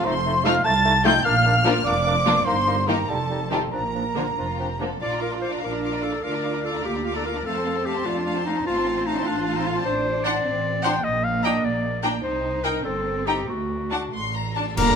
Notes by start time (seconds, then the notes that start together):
0.05 F1 F2 A3 D#4 C5 C6
0.26 A3 D#4
0.44 F3 A3 D#4 F4 F5 F6
0.64 C2 A3 D#4 A5 A6
0.85 A3 D#4
1.04 F3 A3 D#4 F4 G5 G6
1.25 A#1 A#2 A#3 D4 F5 F6
1.45 A#3 D4
1.65 F3 A#3 D4 F4
1.85 F1 F2 A#3 D4 D5 D6
2.06 A#3 D4
2.25 F3 A#3 D4 F4
2.45 G1 G2 A#3 D#4 C5 C6
2.66 A#3 D#4
2.87 D#3 A#3 D#4 G4 A#4 A#5
3.09 F1 F2 G3 D#4 A4 A5
3.30 G3 D#4
3.51 D#3 G3 C4 D#4 F4 G4 A4 A5
3.72 A#1 A#2 F3 D4 A#4 A#5
3.94 F3 D4
4.15 D3 F3 A#3 D4 F4 A#4
4.37 F1 F2 F3 D4 F4
4.59 F3 D4 G4
4.79 D3 F3 A#3 D4 A4
5.01 A#1 F4 D5 F5 D6
5.11 D4 D5 A#5
5.21 F4 A#4 F5 D6
5.31 D4 D5 A#5
5.41 F4 C5 F5 D6
5.52 D4 D5 A#5
5.62 A#1 D4 F4 A#4 F5 D6
5.72 D4 D5 A#5
5.82 F4 F5 D6
5.92 D4 D5 A#5
6.02 F4 A4 F5 D6
6.12 D4 D5 A#5
6.23 D2 D4 F4 A#4 F5 D6
6.33 D4 D5 A#5
6.43 F4 F5 D6
6.53 D4 D5 A#5
6.64 F4 A4 F5 D6
6.74 D4 D5 A#5
6.84 D2 A#3 F4 G4 F5 D6
6.94 D4 D5 A#5
7.04 F4 F5 D6
7.14 D4 A4 D5 A#5
7.25 F4 A#4 F5 D6
7.35 D4 D5 A#5
7.45 F2 A3 C4 A4 F5 A5
7.56 C4 A5 C6
7.65 A3 F5 A5
7.76 C4 A5 C6
7.86 A3 G4 F5 A5
7.96 C4 A5 C6
8.06 F2 A3 D4 F4 F5 A5
8.16 C4 A5 C6
8.26 A3 F5 A5
8.36 C4 A5 C6
8.45 A3 D#4 F5 A5
8.56 C4 A5 C6
8.66 A1 A3 C4 F4 F5 A5
8.76 C4 A5 C6
8.86 A3 F5 A5
8.96 C4 A5 C6
9.06 A3 D#4 F5 A5
9.16 C4 A5 C6
9.26 A1 A3 D4 F4 F5 A5
9.36 C4 A5 C6
9.45 A3 F5 A5
9.55 C4 D#4 A5 C6
9.65 A3 F4 F5 A5
9.75 C4 A5 C6
9.85 A1 D4 C5
10.24 D4 D5 F#5 C6
10.45 A1 C4
10.83 D4 F#5 G5 C6
11.04 A#1 A#3 D#5
11.24 F5
11.43 D4 D#5 G5 A#5
11.64 A#1 D5
12.03 D4 G5 A#5
12.23 C2 D#4 C5
12.64 D#4 A#4 G5 A#5
12.84 G1 C4 A4
13.26 D#4 G4 G5 A#5
13.49 D2 A3 F#4
13.91 D4 F#5 A5
14.12 A1 C6
14.34 A#5
14.55 D4 A5
14.76 G1 G2 D3 G3 A#3 D4 A#4 A#5 D6, concert bass drum, crash